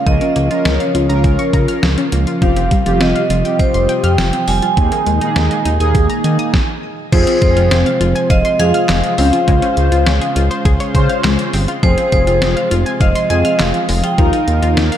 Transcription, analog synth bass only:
0.07 0.20 C#2 loud
0.36 0.49 C#2 loud
0.65 0.79 C#2 loud
0.95 1.08 C#2 loud
1.10 1.23 C#2 loud
1.24 1.38 C#2 loud
1.53 1.67 C#3 loud
1.83 1.96 C#2 loud
2.12 2.26 C#2 loud
2.42 2.55 F1 loud
2.57 2.70 F1 loud
2.86 2.99 F1 loud
3.01 3.14 F1 loud
3.30 3.44 F1 loud
3.74 3.88 F1 medium
4.04 4.17 F2 loud
4.18 4.32 F1 loud
4.48 4.61 F1 loud
4.77 4.91 D#2 loud
5.07 5.20 D#2 loud
5.36 5.49 D#2 loud
5.65 5.79 D#2 medium
5.80 5.94 D#2 loud
5.95 6.08 D#2 loud
6.24 6.38 D#3 loud
7.12 7.26 F1 loud
7.42 7.55 F1 loud
7.57 7.70 F1 loud
7.71 7.85 F1 loud
8.01 8.14 F1 loud
8.30 8.43 F1 loud
8.60 8.73 F2 loud
8.89 9.02 F1 loud
9.18 9.32 C#2 loud
9.48 9.61 C#2 loud
9.77 9.91 C#2 loud
9.92 10.05 C#2 loud
10.07 10.20 C#2 loud
10.36 10.49 C#2 loud
10.65 10.79 C#2 loud
10.95 11.08 C#3 loud
11.24 11.38 C#2 loud
11.54 11.67 G1 medium
11.83 11.96 F1 loud
12.12 12.26 F1 loud
12.27 12.41 F1 loud
12.42 12.55 F1 loud
12.71 12.85 F1 loud
13.01 13.14 F1 loud
13.30 13.44 F2 medium
13.60 13.73 F1 loud
13.89 14.02 F1 loud
14.18 14.32 D#2 loud
14.48 14.61 D#2 loud
14.62 14.76 D#2 loud
14.77 14.91 D#2 loud

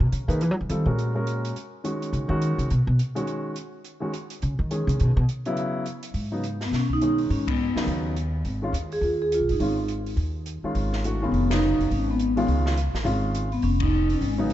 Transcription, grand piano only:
0.28 0.39 A#3 medium
0.28 0.39 D#4 medium
0.28 0.39 G#4 medium
0.28 0.39 B4 medium
0.70 0.85 G3 medium
0.70 0.86 C4 medium
0.70 0.86 F4 soft
0.70 0.86 A4 medium
0.86 1.12 G#3 medium
0.86 1.12 C#4 medium
0.86 1.12 F#4 medium
0.86 1.12 A#4 medium
1.15 1.53 G#3 medium
1.15 1.53 C#4 medium
1.15 1.53 F#4 medium
1.15 1.53 A#4 medium
1.84 2.27 D#3 medium
1.84 2.27 G#3 medium
1.84 2.27 C#4 medium
1.84 2.27 F#4 medium
2.28 2.67 D#3 medium
2.28 2.68 G#3 medium
2.28 2.68 C#4 medium
2.28 2.68 F#4 medium
3.15 3.53 D#3 medium
3.15 3.53 G#3 medium
3.15 3.54 C#4 medium
3.15 3.54 F#4 medium
4.00 4.11 D#3 medium
4.00 4.12 G#3 medium
4.00 4.12 C#4 soft
4.00 4.12 F#4 medium
4.71 5.13 D#3 medium
4.71 5.14 G#3 soft
4.71 5.14 C#4 medium
4.71 5.14 G#4 medium
5.46 5.84 C#3 medium
5.46 5.84 F#3 medium
5.46 5.84 B3 medium
5.46 5.84 E4 medium
6.32 6.42 C#3 medium
6.32 6.42 F#3 medium
6.32 6.42 B3 medium
6.32 6.42 D#4 medium
7.02 7.44 D#3 medium
7.02 7.44 G#3 medium
7.02 7.44 C#4 medium
7.02 7.45 D#4 medium
7.75 8.13 C#3 medium
7.75 8.14 F#3 medium
7.75 8.14 B3 medium
7.75 8.14 D#4 medium
8.62 8.72 D#3 medium
8.62 8.72 G#3 medium
8.62 8.73 C#4 medium
8.62 8.73 F4 medium
9.60 9.76 D#3 medium
9.60 9.76 G#3 medium
9.60 9.76 C#4 medium
9.60 9.76 F4 medium
10.64 11.02 D#3 medium
10.64 11.02 G#3 medium
10.64 11.02 C#4 medium
10.64 11.02 F4 medium
11.04 11.20 E3 medium
11.04 11.20 A3 medium
11.04 11.20 D4 medium
11.04 11.21 F#4 medium
11.22 11.47 D#3 medium
11.22 11.47 G#3 medium
11.22 11.47 C#4 medium
11.22 11.47 F4 medium
11.50 11.88 C#3 medium
11.50 11.88 F#3 medium
11.50 11.88 B3 medium
11.50 11.88 D#4 medium
12.36 12.74 D#3 medium
12.36 12.75 G#3 medium
12.36 12.75 C#4 medium
12.36 12.75 F4 medium
13.04 13.48 D#3 medium
13.04 13.48 G#3 medium
13.04 13.48 C#4 medium
13.04 13.48 F4 medium
14.38 14.53 C#3 medium
14.38 14.53 F#3 medium
14.38 14.53 B3 medium
14.38 14.53 D#4 medium

